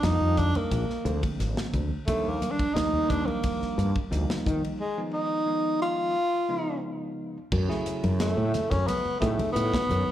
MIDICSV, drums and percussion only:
0, 0, Header, 1, 2, 480
1, 0, Start_track
1, 0, Tempo, 680272
1, 1466, Time_signature, 4, 2, 24, 8
1, 7138, End_track
2, 0, Start_track
2, 0, Title_t, "Drums"
2, 23, Note_on_c, 9, 38, 97
2, 23, Note_on_c, 9, 44, 79
2, 23, Note_on_c, 9, 51, 79
2, 93, Note_off_c, 9, 44, 0
2, 93, Note_off_c, 9, 51, 0
2, 94, Note_off_c, 9, 38, 0
2, 264, Note_on_c, 9, 36, 66
2, 266, Note_on_c, 9, 44, 74
2, 266, Note_on_c, 9, 51, 53
2, 273, Note_on_c, 9, 64, 59
2, 335, Note_off_c, 9, 36, 0
2, 336, Note_off_c, 9, 44, 0
2, 336, Note_off_c, 9, 51, 0
2, 343, Note_off_c, 9, 64, 0
2, 389, Note_on_c, 9, 51, 47
2, 389, Note_on_c, 9, 63, 59
2, 459, Note_off_c, 9, 51, 0
2, 460, Note_off_c, 9, 63, 0
2, 504, Note_on_c, 9, 36, 72
2, 505, Note_on_c, 9, 44, 69
2, 505, Note_on_c, 9, 51, 69
2, 575, Note_off_c, 9, 36, 0
2, 575, Note_off_c, 9, 44, 0
2, 575, Note_off_c, 9, 51, 0
2, 633, Note_on_c, 9, 38, 27
2, 704, Note_off_c, 9, 38, 0
2, 745, Note_on_c, 9, 44, 71
2, 745, Note_on_c, 9, 51, 52
2, 815, Note_off_c, 9, 44, 0
2, 815, Note_off_c, 9, 51, 0
2, 867, Note_on_c, 9, 63, 57
2, 869, Note_on_c, 9, 36, 76
2, 870, Note_on_c, 9, 51, 65
2, 938, Note_off_c, 9, 63, 0
2, 939, Note_off_c, 9, 36, 0
2, 940, Note_off_c, 9, 51, 0
2, 988, Note_on_c, 9, 44, 72
2, 988, Note_on_c, 9, 51, 72
2, 989, Note_on_c, 9, 38, 28
2, 1059, Note_off_c, 9, 38, 0
2, 1059, Note_off_c, 9, 44, 0
2, 1059, Note_off_c, 9, 51, 0
2, 1110, Note_on_c, 9, 38, 91
2, 1180, Note_off_c, 9, 38, 0
2, 1224, Note_on_c, 9, 44, 64
2, 1224, Note_on_c, 9, 51, 52
2, 1225, Note_on_c, 9, 36, 60
2, 1230, Note_on_c, 9, 64, 54
2, 1294, Note_off_c, 9, 44, 0
2, 1294, Note_off_c, 9, 51, 0
2, 1295, Note_off_c, 9, 36, 0
2, 1300, Note_off_c, 9, 64, 0
2, 1466, Note_on_c, 9, 36, 96
2, 1466, Note_on_c, 9, 44, 78
2, 1466, Note_on_c, 9, 51, 79
2, 1536, Note_off_c, 9, 36, 0
2, 1537, Note_off_c, 9, 44, 0
2, 1537, Note_off_c, 9, 51, 0
2, 1707, Note_on_c, 9, 44, 74
2, 1707, Note_on_c, 9, 51, 54
2, 1707, Note_on_c, 9, 63, 61
2, 1777, Note_off_c, 9, 44, 0
2, 1777, Note_off_c, 9, 51, 0
2, 1777, Note_off_c, 9, 63, 0
2, 1830, Note_on_c, 9, 36, 75
2, 1831, Note_on_c, 9, 51, 53
2, 1901, Note_off_c, 9, 36, 0
2, 1901, Note_off_c, 9, 51, 0
2, 1950, Note_on_c, 9, 44, 77
2, 1950, Note_on_c, 9, 51, 77
2, 1951, Note_on_c, 9, 38, 99
2, 2021, Note_off_c, 9, 38, 0
2, 2021, Note_off_c, 9, 44, 0
2, 2021, Note_off_c, 9, 51, 0
2, 2187, Note_on_c, 9, 36, 72
2, 2188, Note_on_c, 9, 44, 73
2, 2188, Note_on_c, 9, 51, 52
2, 2188, Note_on_c, 9, 64, 66
2, 2258, Note_off_c, 9, 36, 0
2, 2258, Note_off_c, 9, 44, 0
2, 2258, Note_off_c, 9, 51, 0
2, 2259, Note_off_c, 9, 64, 0
2, 2313, Note_on_c, 9, 63, 61
2, 2384, Note_off_c, 9, 63, 0
2, 2423, Note_on_c, 9, 44, 68
2, 2423, Note_on_c, 9, 51, 74
2, 2426, Note_on_c, 9, 36, 79
2, 2494, Note_off_c, 9, 44, 0
2, 2494, Note_off_c, 9, 51, 0
2, 2497, Note_off_c, 9, 36, 0
2, 2552, Note_on_c, 9, 38, 27
2, 2622, Note_off_c, 9, 38, 0
2, 2671, Note_on_c, 9, 44, 78
2, 2671, Note_on_c, 9, 51, 53
2, 2742, Note_off_c, 9, 44, 0
2, 2742, Note_off_c, 9, 51, 0
2, 2791, Note_on_c, 9, 63, 57
2, 2792, Note_on_c, 9, 36, 76
2, 2861, Note_off_c, 9, 63, 0
2, 2863, Note_off_c, 9, 36, 0
2, 2910, Note_on_c, 9, 44, 69
2, 2910, Note_on_c, 9, 51, 63
2, 2981, Note_off_c, 9, 44, 0
2, 2981, Note_off_c, 9, 51, 0
2, 3034, Note_on_c, 9, 38, 94
2, 3104, Note_off_c, 9, 38, 0
2, 3150, Note_on_c, 9, 36, 67
2, 3150, Note_on_c, 9, 64, 65
2, 3156, Note_on_c, 9, 44, 71
2, 3156, Note_on_c, 9, 51, 48
2, 3221, Note_off_c, 9, 36, 0
2, 3221, Note_off_c, 9, 64, 0
2, 3226, Note_off_c, 9, 44, 0
2, 3226, Note_off_c, 9, 51, 0
2, 3277, Note_on_c, 9, 51, 50
2, 3348, Note_off_c, 9, 51, 0
2, 5305, Note_on_c, 9, 49, 82
2, 5306, Note_on_c, 9, 36, 92
2, 5376, Note_off_c, 9, 36, 0
2, 5376, Note_off_c, 9, 49, 0
2, 5436, Note_on_c, 9, 38, 29
2, 5506, Note_off_c, 9, 38, 0
2, 5545, Note_on_c, 9, 44, 79
2, 5545, Note_on_c, 9, 51, 56
2, 5616, Note_off_c, 9, 44, 0
2, 5616, Note_off_c, 9, 51, 0
2, 5670, Note_on_c, 9, 51, 59
2, 5670, Note_on_c, 9, 63, 65
2, 5740, Note_off_c, 9, 63, 0
2, 5741, Note_off_c, 9, 51, 0
2, 5785, Note_on_c, 9, 44, 77
2, 5785, Note_on_c, 9, 51, 75
2, 5786, Note_on_c, 9, 38, 100
2, 5856, Note_off_c, 9, 38, 0
2, 5856, Note_off_c, 9, 44, 0
2, 5856, Note_off_c, 9, 51, 0
2, 6026, Note_on_c, 9, 44, 79
2, 6026, Note_on_c, 9, 51, 57
2, 6027, Note_on_c, 9, 38, 28
2, 6033, Note_on_c, 9, 64, 72
2, 6096, Note_off_c, 9, 44, 0
2, 6096, Note_off_c, 9, 51, 0
2, 6097, Note_off_c, 9, 38, 0
2, 6103, Note_off_c, 9, 64, 0
2, 6149, Note_on_c, 9, 36, 68
2, 6149, Note_on_c, 9, 38, 27
2, 6149, Note_on_c, 9, 51, 48
2, 6156, Note_on_c, 9, 63, 60
2, 6219, Note_off_c, 9, 51, 0
2, 6220, Note_off_c, 9, 36, 0
2, 6220, Note_off_c, 9, 38, 0
2, 6227, Note_off_c, 9, 63, 0
2, 6267, Note_on_c, 9, 63, 61
2, 6268, Note_on_c, 9, 44, 78
2, 6268, Note_on_c, 9, 51, 77
2, 6337, Note_off_c, 9, 63, 0
2, 6339, Note_off_c, 9, 44, 0
2, 6339, Note_off_c, 9, 51, 0
2, 6504, Note_on_c, 9, 36, 74
2, 6507, Note_on_c, 9, 38, 27
2, 6507, Note_on_c, 9, 44, 76
2, 6507, Note_on_c, 9, 51, 48
2, 6575, Note_off_c, 9, 36, 0
2, 6577, Note_off_c, 9, 44, 0
2, 6577, Note_off_c, 9, 51, 0
2, 6578, Note_off_c, 9, 38, 0
2, 6628, Note_on_c, 9, 51, 60
2, 6629, Note_on_c, 9, 63, 57
2, 6629, Note_on_c, 9, 64, 62
2, 6698, Note_off_c, 9, 51, 0
2, 6699, Note_off_c, 9, 63, 0
2, 6699, Note_off_c, 9, 64, 0
2, 6745, Note_on_c, 9, 44, 80
2, 6745, Note_on_c, 9, 51, 74
2, 6815, Note_off_c, 9, 44, 0
2, 6815, Note_off_c, 9, 51, 0
2, 6869, Note_on_c, 9, 36, 74
2, 6876, Note_on_c, 9, 38, 110
2, 6940, Note_off_c, 9, 36, 0
2, 6946, Note_off_c, 9, 38, 0
2, 6981, Note_on_c, 9, 64, 63
2, 6989, Note_on_c, 9, 44, 76
2, 6989, Note_on_c, 9, 51, 52
2, 7052, Note_off_c, 9, 64, 0
2, 7059, Note_off_c, 9, 44, 0
2, 7059, Note_off_c, 9, 51, 0
2, 7138, End_track
0, 0, End_of_file